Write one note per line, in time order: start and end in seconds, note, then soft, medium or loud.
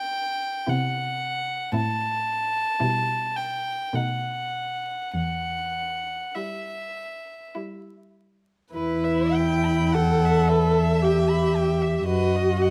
0.00 0.42 B3 medium
0.00 0.42 F4 soft
0.00 0.70 G5 medium
0.67 1.53 C3 medium
0.67 1.48 B3 medium
0.67 1.47 E4 medium
0.67 1.74 F#5 medium
1.72 2.59 A2 medium
1.72 2.54 C4 soft
1.72 2.55 E4 soft
1.72 3.38 A5 medium
2.80 3.72 B2 medium
2.80 3.66 G3 soft
2.80 3.66 E4 soft
3.36 3.96 G5 medium
3.93 4.91 B2 medium
3.93 4.85 A3 soft
3.93 4.85 D#4 soft
3.93 5.14 F#5 medium
5.14 6.13 E2 soft
5.14 6.36 F#5 medium
6.35 7.28 G3 soft
6.35 7.28 E4 soft
6.35 7.55 E5 medium
7.55 8.47 G3 soft
7.55 8.47 E4 soft
8.73 12.04 E2 medium
8.73 9.96 E4 medium
8.73 9.35 B4 medium
8.73 9.05 B4 medium
9.04 9.36 E5 medium
9.33 9.94 G5 medium
9.33 9.67 G5 medium
9.65 9.97 B5 medium
9.93 11.04 A4 medium
9.93 10.50 F#5 medium
9.93 10.26 G5 medium
10.25 10.52 E5 medium
10.49 10.79 B4 medium
10.49 12.06 E5 medium
10.78 11.06 E5 soft
11.02 12.07 G4 medium
11.02 11.31 G5 soft
11.29 11.58 B5 soft
11.56 11.83 G5 medium
11.82 12.08 E5 soft
12.06 12.70 F#2 medium
12.06 12.70 F#4 medium
12.06 12.37 B4 medium
12.06 12.59 D#5 medium
12.35 12.63 D#5 soft
12.60 12.70 D#5 medium
12.60 12.70 F#5 soft